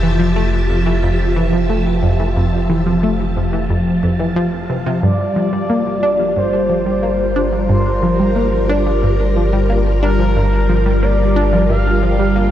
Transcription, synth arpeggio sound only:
0, 0, Header, 1, 2, 480
1, 0, Start_track
1, 0, Tempo, 666667
1, 1702, Time_signature, 4, 2, 24, 8
1, 9008, End_track
2, 0, Start_track
2, 0, Title_t, "Synth arpeggio sound"
2, 0, Program_c, 0, 84
2, 21, Note_on_c, 0, 52, 75
2, 106, Note_off_c, 0, 52, 0
2, 141, Note_on_c, 0, 53, 76
2, 226, Note_off_c, 0, 53, 0
2, 261, Note_on_c, 0, 57, 83
2, 318, Note_off_c, 0, 57, 0
2, 502, Note_on_c, 0, 41, 77
2, 558, Note_off_c, 0, 41, 0
2, 620, Note_on_c, 0, 52, 74
2, 655, Note_off_c, 0, 52, 0
2, 742, Note_on_c, 0, 41, 83
2, 776, Note_off_c, 0, 41, 0
2, 981, Note_on_c, 0, 52, 80
2, 1066, Note_off_c, 0, 52, 0
2, 1101, Note_on_c, 0, 53, 72
2, 1186, Note_off_c, 0, 53, 0
2, 1220, Note_on_c, 0, 57, 82
2, 1277, Note_off_c, 0, 57, 0
2, 1460, Note_on_c, 0, 41, 77
2, 1517, Note_off_c, 0, 41, 0
2, 1581, Note_on_c, 0, 52, 75
2, 1616, Note_off_c, 0, 52, 0
2, 1703, Note_on_c, 0, 41, 81
2, 1736, Note_off_c, 0, 41, 0
2, 1941, Note_on_c, 0, 52, 76
2, 2026, Note_off_c, 0, 52, 0
2, 2062, Note_on_c, 0, 53, 73
2, 2146, Note_off_c, 0, 53, 0
2, 2183, Note_on_c, 0, 57, 83
2, 2239, Note_off_c, 0, 57, 0
2, 2422, Note_on_c, 0, 41, 76
2, 2478, Note_off_c, 0, 41, 0
2, 2542, Note_on_c, 0, 52, 75
2, 2576, Note_off_c, 0, 52, 0
2, 2662, Note_on_c, 0, 41, 83
2, 2696, Note_off_c, 0, 41, 0
2, 2902, Note_on_c, 0, 41, 72
2, 2936, Note_off_c, 0, 41, 0
2, 3021, Note_on_c, 0, 52, 74
2, 3078, Note_off_c, 0, 52, 0
2, 3141, Note_on_c, 0, 53, 98
2, 3175, Note_off_c, 0, 53, 0
2, 3382, Note_on_c, 0, 48, 78
2, 3438, Note_off_c, 0, 48, 0
2, 3501, Note_on_c, 0, 48, 104
2, 3536, Note_off_c, 0, 48, 0
2, 3621, Note_on_c, 0, 43, 85
2, 3655, Note_off_c, 0, 43, 0
2, 3861, Note_on_c, 0, 53, 73
2, 3946, Note_off_c, 0, 53, 0
2, 3981, Note_on_c, 0, 55, 76
2, 4066, Note_off_c, 0, 55, 0
2, 4102, Note_on_c, 0, 58, 84
2, 4158, Note_off_c, 0, 58, 0
2, 4341, Note_on_c, 0, 62, 103
2, 4398, Note_off_c, 0, 62, 0
2, 4460, Note_on_c, 0, 53, 77
2, 4495, Note_off_c, 0, 53, 0
2, 4581, Note_on_c, 0, 43, 81
2, 4616, Note_off_c, 0, 43, 0
2, 4821, Note_on_c, 0, 53, 76
2, 4906, Note_off_c, 0, 53, 0
2, 4940, Note_on_c, 0, 55, 77
2, 5026, Note_off_c, 0, 55, 0
2, 5061, Note_on_c, 0, 58, 82
2, 5118, Note_off_c, 0, 58, 0
2, 5300, Note_on_c, 0, 62, 102
2, 5357, Note_off_c, 0, 62, 0
2, 5418, Note_on_c, 0, 53, 77
2, 5454, Note_off_c, 0, 53, 0
2, 5539, Note_on_c, 0, 43, 85
2, 5575, Note_off_c, 0, 43, 0
2, 5780, Note_on_c, 0, 53, 75
2, 5865, Note_off_c, 0, 53, 0
2, 5902, Note_on_c, 0, 55, 78
2, 5986, Note_off_c, 0, 55, 0
2, 6019, Note_on_c, 0, 58, 82
2, 6077, Note_off_c, 0, 58, 0
2, 6260, Note_on_c, 0, 62, 108
2, 6318, Note_off_c, 0, 62, 0
2, 6381, Note_on_c, 0, 53, 77
2, 6416, Note_off_c, 0, 53, 0
2, 6502, Note_on_c, 0, 43, 84
2, 6536, Note_off_c, 0, 43, 0
2, 6742, Note_on_c, 0, 53, 75
2, 6827, Note_off_c, 0, 53, 0
2, 6862, Note_on_c, 0, 55, 77
2, 6947, Note_off_c, 0, 55, 0
2, 6981, Note_on_c, 0, 58, 79
2, 7038, Note_off_c, 0, 58, 0
2, 7219, Note_on_c, 0, 62, 103
2, 7277, Note_off_c, 0, 62, 0
2, 7339, Note_on_c, 0, 53, 75
2, 7375, Note_off_c, 0, 53, 0
2, 7461, Note_on_c, 0, 43, 85
2, 7495, Note_off_c, 0, 43, 0
2, 7700, Note_on_c, 0, 53, 81
2, 7785, Note_off_c, 0, 53, 0
2, 7819, Note_on_c, 0, 55, 78
2, 7905, Note_off_c, 0, 55, 0
2, 7940, Note_on_c, 0, 58, 80
2, 7998, Note_off_c, 0, 58, 0
2, 8181, Note_on_c, 0, 62, 105
2, 8238, Note_off_c, 0, 62, 0
2, 8300, Note_on_c, 0, 53, 77
2, 8335, Note_off_c, 0, 53, 0
2, 8418, Note_on_c, 0, 43, 82
2, 8454, Note_off_c, 0, 43, 0
2, 8659, Note_on_c, 0, 53, 76
2, 8745, Note_off_c, 0, 53, 0
2, 8780, Note_on_c, 0, 55, 75
2, 8865, Note_off_c, 0, 55, 0
2, 8899, Note_on_c, 0, 58, 82
2, 8957, Note_off_c, 0, 58, 0
2, 9008, End_track
0, 0, End_of_file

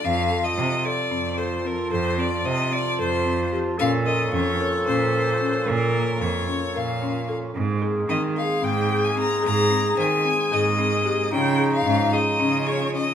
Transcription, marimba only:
0, 0, Header, 1, 2, 480
1, 0, Start_track
1, 0, Tempo, 537153
1, 38, Time_signature, 7, 3, 24, 8
1, 11742, End_track
2, 0, Start_track
2, 0, Title_t, "Marimba"
2, 0, Program_c, 0, 12
2, 41, Note_on_c, 0, 60, 65
2, 176, Note_off_c, 0, 60, 0
2, 281, Note_on_c, 0, 69, 62
2, 416, Note_off_c, 0, 69, 0
2, 521, Note_on_c, 0, 60, 65
2, 656, Note_off_c, 0, 60, 0
2, 760, Note_on_c, 0, 69, 58
2, 895, Note_off_c, 0, 69, 0
2, 996, Note_on_c, 0, 60, 74
2, 1133, Note_off_c, 0, 60, 0
2, 1231, Note_on_c, 0, 69, 61
2, 1369, Note_off_c, 0, 69, 0
2, 1474, Note_on_c, 0, 60, 63
2, 1611, Note_off_c, 0, 60, 0
2, 1710, Note_on_c, 0, 69, 71
2, 1848, Note_off_c, 0, 69, 0
2, 1950, Note_on_c, 0, 60, 69
2, 2087, Note_off_c, 0, 60, 0
2, 2191, Note_on_c, 0, 72, 70
2, 2328, Note_off_c, 0, 72, 0
2, 2425, Note_on_c, 0, 60, 58
2, 2564, Note_off_c, 0, 60, 0
2, 2672, Note_on_c, 0, 69, 73
2, 2809, Note_off_c, 0, 69, 0
2, 2909, Note_on_c, 0, 60, 66
2, 3047, Note_off_c, 0, 60, 0
2, 3152, Note_on_c, 0, 67, 70
2, 3289, Note_off_c, 0, 67, 0
2, 3395, Note_on_c, 0, 61, 83
2, 3531, Note_off_c, 0, 61, 0
2, 3629, Note_on_c, 0, 70, 69
2, 3767, Note_off_c, 0, 70, 0
2, 3872, Note_on_c, 0, 61, 71
2, 4009, Note_off_c, 0, 61, 0
2, 4112, Note_on_c, 0, 70, 67
2, 4249, Note_off_c, 0, 70, 0
2, 4355, Note_on_c, 0, 61, 75
2, 4491, Note_off_c, 0, 61, 0
2, 4588, Note_on_c, 0, 70, 62
2, 4725, Note_off_c, 0, 70, 0
2, 4834, Note_on_c, 0, 61, 67
2, 4970, Note_off_c, 0, 61, 0
2, 5070, Note_on_c, 0, 70, 73
2, 5207, Note_off_c, 0, 70, 0
2, 5309, Note_on_c, 0, 58, 65
2, 5446, Note_off_c, 0, 58, 0
2, 5554, Note_on_c, 0, 70, 78
2, 5690, Note_off_c, 0, 70, 0
2, 5791, Note_on_c, 0, 61, 59
2, 5928, Note_off_c, 0, 61, 0
2, 6033, Note_on_c, 0, 70, 75
2, 6169, Note_off_c, 0, 70, 0
2, 6275, Note_on_c, 0, 61, 63
2, 6411, Note_off_c, 0, 61, 0
2, 6512, Note_on_c, 0, 69, 70
2, 6649, Note_off_c, 0, 69, 0
2, 6754, Note_on_c, 0, 60, 66
2, 6890, Note_off_c, 0, 60, 0
2, 6988, Note_on_c, 0, 68, 70
2, 7126, Note_off_c, 0, 68, 0
2, 7231, Note_on_c, 0, 60, 75
2, 7368, Note_off_c, 0, 60, 0
2, 7471, Note_on_c, 0, 68, 63
2, 7608, Note_off_c, 0, 68, 0
2, 7706, Note_on_c, 0, 60, 75
2, 7845, Note_off_c, 0, 60, 0
2, 7947, Note_on_c, 0, 68, 65
2, 8085, Note_off_c, 0, 68, 0
2, 8189, Note_on_c, 0, 60, 65
2, 8327, Note_off_c, 0, 60, 0
2, 8425, Note_on_c, 0, 68, 80
2, 8564, Note_off_c, 0, 68, 0
2, 8671, Note_on_c, 0, 60, 73
2, 8809, Note_off_c, 0, 60, 0
2, 8913, Note_on_c, 0, 72, 69
2, 9050, Note_off_c, 0, 72, 0
2, 9160, Note_on_c, 0, 60, 67
2, 9295, Note_off_c, 0, 60, 0
2, 9401, Note_on_c, 0, 68, 78
2, 9536, Note_off_c, 0, 68, 0
2, 9640, Note_on_c, 0, 60, 72
2, 9776, Note_off_c, 0, 60, 0
2, 9880, Note_on_c, 0, 67, 76
2, 10016, Note_off_c, 0, 67, 0
2, 10124, Note_on_c, 0, 61, 73
2, 10258, Note_off_c, 0, 61, 0
2, 10357, Note_on_c, 0, 68, 76
2, 10494, Note_off_c, 0, 68, 0
2, 10598, Note_on_c, 0, 61, 78
2, 10735, Note_off_c, 0, 61, 0
2, 10838, Note_on_c, 0, 68, 66
2, 10975, Note_off_c, 0, 68, 0
2, 11081, Note_on_c, 0, 61, 85
2, 11217, Note_off_c, 0, 61, 0
2, 11323, Note_on_c, 0, 68, 65
2, 11459, Note_off_c, 0, 68, 0
2, 11566, Note_on_c, 0, 61, 67
2, 11701, Note_off_c, 0, 61, 0
2, 11742, End_track
0, 0, End_of_file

